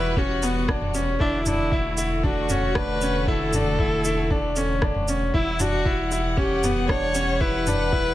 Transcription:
0.00 1.18 E1 medium
0.00 1.16 E3 medium
0.00 1.16 G3 medium
0.00 0.13 E4 medium
0.00 1.18 F#4 medium
0.00 0.19 B4 loud
0.17 0.39 C#4 medium
0.17 0.95 F#4 loud
0.17 kick loud
0.43 0.65 B3 medium
0.43 shaker medium
0.68 0.91 D4 medium
0.68 kick loud
0.68 cross-stick medium
0.81 mid tom medium
0.94 1.17 C#4 medium
0.94 shaker medium
1.20 5.31 E1 medium
1.20 5.30 D3 medium
1.20 5.30 A3 medium
1.20 1.44 D4 loud
1.20 1.43 E4 medium
1.20 5.30 F#4 medium
1.20 kick loud
1.46 1.69 D4 medium
1.46 1.94 E4 loud
1.46 mid tom medium
1.46 shaker medium
1.72 1.95 E4 medium
1.72 kick loud
1.98 2.20 E4 medium
1.98 shaker medium
2.24 2.46 D4 medium
2.24 2.77 F#4 loud
2.24 kick loud
2.49 2.72 C#4 medium
2.49 mid tom medium
2.49 shaker medium
2.75 2.98 D4 medium
2.75 3.29 B4 loud
2.75 kick loud
2.75 cross-stick medium
3.01 3.24 C#4 medium
3.01 shaker medium
3.27 3.50 E4 medium
3.27 4.82 A4 loud
3.27 kick loud
3.53 3.76 D4 medium
3.53 mid tom medium
3.53 shaker medium
3.79 4.02 E4 medium
3.79 kick loud
4.05 4.27 E4 medium
4.05 shaker medium
4.30 4.53 D4 medium
4.30 kick loud
4.56 4.79 C#4 medium
4.56 shaker medium
4.82 5.05 D4 medium
4.82 kick loud
4.82 cross-stick medium
4.95 mid tom medium
5.08 5.31 C#4 medium
5.08 shaker medium
5.34 8.14 E1 medium
5.34 8.14 E3 medium
5.34 8.14 G3 medium
5.34 5.62 E4 loud
5.34 5.56 E4 medium
5.34 8.14 F#5 medium
5.34 kick medium
5.60 5.82 D4 medium
5.60 6.12 F#4 loud
5.60 mid tom medium
5.60 shaker medium
5.85 6.08 E4 medium
5.85 kick medium
6.11 6.34 E4 medium
6.11 shaker medium
6.37 6.60 C#4 medium
6.37 6.86 G4 loud
6.37 kick loud
6.63 6.86 B3 medium
6.63 mid tom medium
6.63 shaker medium
6.88 7.11 D4 medium
6.88 7.42 C#5 loud
6.88 kick loud
6.88 cross-stick medium
7.15 7.37 C#4 medium
7.15 shaker medium
7.40 7.63 E4 medium
7.40 8.14 B4 loud
7.40 kick loud
7.67 7.89 D4 medium
7.67 mid tom medium
7.67 shaker medium
7.92 8.14 E4 medium
7.92 kick loud

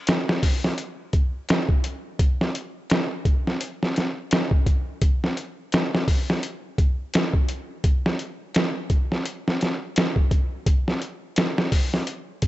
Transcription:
0.07 snare loud
0.07 closed hi-hat medium
0.29 snare medium
0.43 kick medium
0.43 open hi-hat medium
0.64 snare soft
0.78 closed hi-hat medium
1.13 kick medium
1.13 closed hi-hat medium
1.49 snare loud
1.49 closed hi-hat medium
1.69 kick loud
1.84 closed hi-hat medium
2.19 kick loud
2.19 closed hi-hat medium
2.41 snare soft
2.55 closed hi-hat medium
2.90 snare loud
2.90 closed hi-hat medium
3.25 kick medium
3.25 closed hi-hat medium
3.47 snare soft
3.61 closed hi-hat medium
3.83 snare soft
3.96 snare soft
3.96 closed hi-hat medium
4.31 snare loud
4.31 closed hi-hat medium
4.51 kick medium
4.66 kick medium
4.66 closed hi-hat medium
5.02 kick loud
5.02 closed hi-hat medium
5.24 snare soft
5.37 closed hi-hat medium
5.72 snare loud
5.72 closed hi-hat medium
5.95 snare medium
6.08 kick medium
6.08 open hi-hat medium
6.30 snare soft
6.43 closed hi-hat medium
6.78 kick medium
6.78 closed hi-hat medium
7.14 snare loud
7.14 closed hi-hat medium
7.34 kick medium
7.48 closed hi-hat medium
7.84 kick loud
7.84 closed hi-hat medium
8.06 snare soft
8.19 closed hi-hat medium
8.54 snare loud
8.54 closed hi-hat medium
8.90 kick medium
8.90 closed hi-hat medium
9.12 snare soft
9.26 closed hi-hat medium
9.48 snare soft
9.61 snare soft
9.61 closed hi-hat medium
9.96 snare loud
9.96 closed hi-hat medium
10.16 kick medium
10.31 kick medium
10.31 closed hi-hat medium
10.66 kick loud
10.66 closed hi-hat medium
10.88 snare soft
11.02 closed hi-hat medium
11.36 snare loud
11.36 closed hi-hat medium
11.58 snare medium
11.72 kick medium
11.72 open hi-hat medium
11.94 snare soft
12.07 closed hi-hat medium
12.42 kick medium
12.42 closed hi-hat medium

